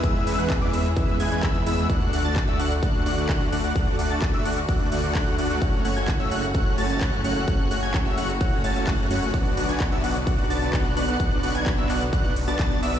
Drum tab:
HH |xxoxxxoxxxoxxxox|xxoxxxoxxxoxxxox|xxoxxxoxxxoxxxox|xxoxxxoxxxoxxxox|
SH |x-xxx-xxx-xxx-xx|x-xxx-xxx-xxx-xx|x-xxx-xxx-xxx-xx|x-xxx-xxx-xxx-xx|
CP |----x-------x---|----x-------x---|----x-------x---|----x-------x---|
BD |o---o---o---o---|o---o---o---o---|o---o---o---o---|o---o---o---o---|

HH |xxoxxxoxxxoxxxo-|xxoxxxo-xxoxxxox|xxoxxxoxxxoxxxox|
SH |x-xxx-xxx-xxx-xx|x-xxx-xxx-xxx-xx|x-xxx-xxx-xxx-xx|
CP |----x-------x---|----x-------x---|----x-x-----x---|
BD |o---o---o---o---|o---o---o---o---|o---o---o---o---|